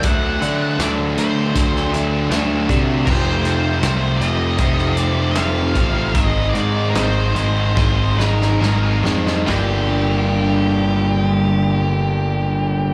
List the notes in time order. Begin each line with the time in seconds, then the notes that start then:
0.03 D2 D3 F#3 A3 D4 F#5, kick, closed hi-hat
0.41 D3 F#3 A3 D4, closed hi-hat
0.78 D2 D3 F#3 A3 D4 D5, snare, closed hi-hat
1.17 D2 D3 F#3 A3 D4 C5, closed hi-hat
1.55 D2 D3 F#3 A3 D4, kick, closed hi-hat
1.76 snare
1.91 D3 F#3 A3 D4, closed hi-hat
2.30 D2 D3 F#3 A3 D4, snare, closed hi-hat
2.68 C3 D3 F#3 A3 D4, kick, closed hi-hat
3.05 F1 F2 C3 F3 A3 C4 C5, kick, crash
3.43 F2 C3 F3 A3 C4 C5, closed hi-hat
3.82 C2 F2 C3 F3 A3 C4, snare, closed hi-hat
4.18 F1 F2 D#5, closed hi-hat
4.22 C3 F3 A3 C4, snare
4.58 F1 F2 C3 F3 A3 C4, kick, closed hi-hat
4.78 snare
4.97 F2 C3 F3 A3 C4 D5, closed hi-hat
5.31 F5
5.35 F1 F2 C3 F3 A3 C4, snare, closed hi-hat
5.75 A1 F2 C3 F3 A3 C4, kick, closed hi-hat
6.09 E5
6.14 G#1 G#2 D#3 G#3 C4 D#4, kick, closed hi-hat
6.26 D#5
6.50 G#2 D5
6.54 G#2 D#3 G#3 C4 D#4, closed hi-hat
6.90 C5
6.94 G#1 G#2 D#3 G#3 C4 D#4, snare, closed hi-hat
7.34 G#1 G#2 D#3 G#3 C4 D#4, closed hi-hat
7.74 G#1 G#2 D#3 G#3 C4 D#4, kick, snare
8.17 G#2 D#3 G#3 C4 D#4, snare
8.26 A#4
8.41 snare
8.60 G#1 G#2 D#3 G#3 C4 D#4, snare
9.03 F2 G#2 D#3 G#3 C4 D#4, snare
9.27 snare
9.46 G1 G2 D3 G3 A#3 D4 G4, snare, floor tom